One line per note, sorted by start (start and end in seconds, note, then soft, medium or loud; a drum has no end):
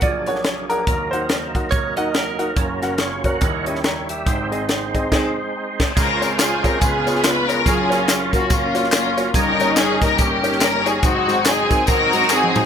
0.01 0.83 A#1 medium
0.01 0.83 A#2 medium
0.01 0.86 F#3 medium
0.01 0.86 A#3 medium
0.01 0.86 D4 soft
0.01 0.85 G#4 medium
0.01 0.28 D5 medium
0.01 kick loud
0.01 closed hi-hat medium
0.26 0.37 D4 medium
0.26 0.37 G#4 medium
0.26 0.37 A#4 medium
0.26 0.71 C#5 medium
0.26 0.37 F#5 medium
0.26 closed hi-hat medium
0.35 snare soft
0.44 snare loud
0.44 closed hi-hat medium
0.69 0.80 D4 medium
0.69 0.80 G#4 medium
0.69 1.13 A#4 medium
0.69 0.79 A#4 medium
0.69 0.80 F#5 medium
0.69 closed hi-hat medium
0.87 2.53 D#2 medium
0.87 2.53 D#3 medium
0.87 2.54 F#3 medium
0.87 2.54 A#3 medium
0.87 2.54 D#4 soft
0.87 2.54 A#4 medium
0.87 kick loud
0.87 closed hi-hat medium
1.11 1.22 D#4 medium
1.11 1.22 F#4 medium
1.11 1.22 A#4 medium
1.11 1.67 C5 medium
1.11 1.22 F#5 medium
1.11 closed hi-hat medium
1.29 snare loud
1.29 closed hi-hat medium
1.55 1.65 D#4 medium
1.55 1.64 F#4 medium
1.55 1.65 A#4 medium
1.55 1.64 F#5 medium
1.55 kick medium
1.55 closed hi-hat medium
1.71 1.95 C#5 medium
1.71 kick loud
1.71 closed hi-hat medium
1.97 2.07 D#4 medium
1.97 2.07 F#4 medium
1.97 2.07 A#4 medium
1.97 2.13 D#5 medium
1.97 2.07 F#5 medium
1.97 closed hi-hat medium
2.14 2.55 A#4 medium
2.14 snare loud
2.14 closed hi-hat medium
2.39 2.48 D#4 medium
2.39 2.49 F#4 medium
2.39 2.49 A#4 medium
2.39 2.49 F#5 medium
2.39 closed hi-hat medium
2.56 3.38 F#1 medium
2.56 3.37 F#2 medium
2.56 3.40 F#3 medium
2.56 3.39 A#3 medium
2.56 3.40 C#4 medium
2.56 2.62 A4 medium
2.56 kick loud
2.56 closed hi-hat medium
2.61 3.01 A#4 medium
2.82 2.91 C#4 medium
2.82 2.92 F#4 medium
2.82 2.92 A#4 medium
2.82 2.92 F#5 medium
2.82 snare soft
2.82 closed hi-hat medium
2.98 3.25 F4 soft
2.98 3.24 C#5 medium
2.98 snare medium
2.98 closed hi-hat medium
3.24 3.34 C#4 medium
3.24 3.34 F#4 medium
3.24 3.34 A#4 medium
3.24 3.66 A#4 soft
3.24 3.34 C#5 medium
3.24 3.65 F#5 medium
3.24 kick medium
3.24 closed hi-hat medium
3.41 4.22 D#2 medium
3.41 4.22 D#3 medium
3.41 3.48 F#3 medium
3.41 3.83 D#4 medium
3.41 3.83 E4 medium
3.41 3.83 C#5 medium
3.41 kick loud
3.41 closed hi-hat medium
3.47 4.27 G3 medium
3.66 3.76 C#4 medium
3.66 3.76 E4 medium
3.66 3.76 G4 medium
3.66 3.76 D#5 medium
3.66 closed hi-hat medium
3.75 snare soft
3.84 4.09 E4 medium
3.84 4.08 C#5 medium
3.84 4.08 G5 soft
3.84 4.08 A#5 medium
3.84 snare loud
3.84 closed hi-hat medium
4.09 4.50 G4 soft
4.09 4.50 E5 medium
4.09 4.50 G5 medium
4.09 closed hi-hat medium
4.26 5.08 G#1 medium
4.26 5.08 G#2 medium
4.26 5.93 G#3 medium
4.26 5.93 C4 medium
4.26 5.92 D#4 medium
4.26 5.93 C5 medium
4.26 kick loud
4.26 closed hi-hat medium
4.51 4.61 C4 medium
4.51 4.61 D#4 medium
4.51 4.61 G#4 medium
4.51 4.61 D#5 medium
4.51 closed hi-hat medium
4.69 snare loud
4.69 closed hi-hat medium
4.94 5.04 C4 medium
4.94 5.04 D#4 medium
4.94 5.04 G#4 medium
4.94 5.04 D#5 medium
4.94 kick medium
4.94 closed hi-hat medium
5.11 5.29 C4 medium
5.11 5.29 D#4 medium
5.11 5.29 G#4 medium
5.11 5.29 D#5 loud
5.11 kick medium
5.11 snare loud
5.11 crash medium
5.80 kick medium
5.80 snare loud
5.80 crash medium
5.96 6.77 C#2 medium
5.96 6.77 C#3 medium
5.96 6.79 G#3 medium
5.96 6.79 C#4 medium
5.96 6.79 F4 medium
5.96 6.77 F4 medium
5.96 6.36 A#4 medium
5.96 6.80 C5 medium
5.96 kick loud
5.96 crash loud
5.96 tambourine medium
6.21 6.31 C4 medium
6.21 6.31 F4 medium
6.21 6.31 G#4 medium
6.21 6.31 C#5 medium
6.21 snare soft
6.21 closed hi-hat medium
6.21 tambourine soft
6.38 6.62 G#4 medium
6.38 snare loud
6.38 clap loud
6.38 closed hi-hat loud
6.38 tambourine loud
6.64 6.73 C4 medium
6.64 6.73 F4 medium
6.64 6.74 G#4 medium
6.64 6.81 A#4 medium
6.64 6.74 C#5 medium
6.64 kick medium
6.64 closed hi-hat medium
6.64 tambourine soft
6.79 7.62 C#2 medium
6.79 7.62 C#3 medium
6.79 7.63 G#3 medium
6.79 7.61 B3 medium
6.79 7.63 C#4 medium
6.79 7.60 F4 medium
6.79 7.63 F4 medium
6.79 7.23 G#4 medium
6.79 7.63 B4 medium
6.79 kick loud
6.79 closed hi-hat medium
6.79 tambourine medium
7.06 7.15 B3 medium
7.06 7.16 F4 medium
7.06 7.16 G#4 medium
7.06 7.16 C#5 medium
7.06 closed hi-hat medium
7.06 tambourine medium
7.15 snare soft
7.24 7.49 B4 medium
7.24 snare loud
7.24 clap medium
7.24 closed hi-hat medium
7.24 tambourine medium
7.49 7.58 B3 medium
7.49 7.58 F4 medium
7.49 7.58 G#4 medium
7.49 7.66 A#4 loud
7.49 7.58 C#5 medium
7.49 closed hi-hat medium
7.49 tambourine medium
7.65 9.31 F#1 medium
7.65 9.31 F#2 medium
7.65 9.31 F#3 medium
7.65 9.31 C#4 medium
7.65 8.46 C#4 medium
7.65 9.31 F4 medium
7.65 8.46 F4 medium
7.65 8.09 G#4 medium
7.65 9.31 A#4 medium
7.65 kick loud
7.65 closed hi-hat loud
7.65 tambourine medium
7.90 8.00 A#3 medium
7.90 7.99 F4 medium
7.90 8.00 F#4 medium
7.90 8.00 C#5 medium
7.90 snare soft
7.90 closed hi-hat medium
7.90 tambourine soft
8.08 snare medium
8.08 clap loud
8.08 closed hi-hat medium
8.08 tambourine loud
8.33 8.42 A#3 medium
8.33 8.42 F4 medium
8.33 8.42 F#4 medium
8.33 8.50 F#4 medium
8.33 8.42 A#4 medium
8.33 kick medium
8.33 closed hi-hat medium
8.33 tambourine soft
8.50 8.92 A#3 medium
8.50 8.91 C#4 medium
8.50 8.93 F4 medium
8.50 kick loud
8.50 closed hi-hat medium
8.50 tambourine medium
8.74 8.84 A#3 medium
8.74 8.84 F4 medium
8.74 8.84 F#4 medium
8.74 8.84 C#5 medium
8.74 closed hi-hat medium
8.74 tambourine medium
8.84 snare soft
8.92 9.32 A#3 medium
8.92 9.32 C#4 medium
8.92 9.25 F4 medium
8.92 snare loud
8.92 clap loud
8.92 closed hi-hat medium
8.92 tambourine medium
9.17 9.27 A#3 medium
9.17 9.27 F4 medium
9.17 9.27 F#4 medium
9.17 9.27 C#5 medium
9.17 closed hi-hat medium
9.17 tambourine soft
9.34 11.00 G1 medium
9.34 11.00 G2 medium
9.34 11.01 G3 medium
9.34 10.15 C#4 medium
9.34 11.01 C#4 medium
9.34 10.15 D#4 medium
9.34 11.01 D#4 medium
9.34 9.41 G#4 medium
9.34 9.75 A#4 medium
9.34 kick loud
9.34 closed hi-hat medium
9.34 tambourine medium
9.41 11.04 A#4 medium
9.59 9.70 A#3 medium
9.59 9.69 D#4 medium
9.59 9.69 G4 medium
9.59 9.70 C#5 medium
9.59 snare soft
9.59 closed hi-hat medium
9.59 tambourine soft
9.76 10.01 G#4 loud
9.76 snare loud
9.76 clap loud
9.76 closed hi-hat medium
9.76 tambourine loud
10.01 10.11 A#3 medium
10.01 10.11 D#4 medium
10.01 10.11 G4 medium
10.01 10.20 A#4 medium
10.01 10.11 D#5 medium
10.01 kick medium
10.01 closed hi-hat medium
10.01 tambourine medium
10.18 11.00 A#3 medium
10.18 11.00 C#4 medium
10.18 10.62 G4 medium
10.18 kick loud
10.18 closed hi-hat medium
10.18 tambourine medium
10.43 10.53 A#3 medium
10.43 10.53 D#4 medium
10.43 10.53 G4 medium
10.43 10.53 C#5 medium
10.43 closed hi-hat medium
10.43 tambourine medium
10.52 snare soft
10.61 10.87 A#4 loud
10.61 snare loud
10.61 clap medium
10.61 closed hi-hat medium
10.61 tambourine medium
10.86 10.96 A#3 medium
10.86 10.96 D#4 medium
10.86 10.96 G4 medium
10.86 11.04 G#4 medium
10.86 10.95 C#5 medium
10.86 closed hi-hat medium
10.86 tambourine medium
11.02 12.65 G#1 medium
11.02 12.65 G#2 medium
11.02 12.65 F#3 medium
11.02 11.45 C4 medium
11.02 12.65 C4 medium
11.02 11.45 D#4 medium
11.02 12.65 D#4 medium
11.02 11.46 F#4 loud
11.02 12.65 G#4 medium
11.02 kick loud
11.02 closed hi-hat medium
11.02 tambourine medium
11.28 11.37 G#3 medium
11.28 11.38 D#4 medium
11.28 11.38 F#4 medium
11.28 11.38 C5 medium
11.28 snare soft
11.28 closed hi-hat medium
11.28 tambourine soft
11.45 12.26 C4 medium
11.45 11.86 D#4 medium
11.45 11.89 G#4 loud
11.45 snare loud
11.45 clap loud
11.45 closed hi-hat medium
11.45 tambourine loud
11.70 11.80 G#3 medium
11.70 11.80 D#4 medium
11.70 11.80 F#4 medium
11.70 11.80 A#4 medium
11.70 kick medium
11.70 closed hi-hat medium
11.70 tambourine soft
11.87 12.30 D#4 medium
11.87 12.65 F#4 medium
11.87 12.31 A#4 loud
11.87 kick loud
11.87 closed hi-hat medium
11.87 tambourine medium
12.13 12.22 G#3 medium
12.13 12.22 D#4 medium
12.13 12.22 F#4 medium
12.13 12.23 A#4 medium
12.13 closed hi-hat medium
12.13 tambourine medium
12.22 snare soft
12.29 12.65 C4 medium
12.29 12.65 D#4 medium
12.29 12.65 G#4 loud
12.29 snare medium
12.29 clap loud
12.29 tambourine medium
12.44 high tom medium
12.55 12.64 G#3 medium
12.55 12.64 D#4 medium
12.55 12.64 F#4 medium
12.55 12.65 C5 medium
12.55 mid tom medium
12.55 tambourine medium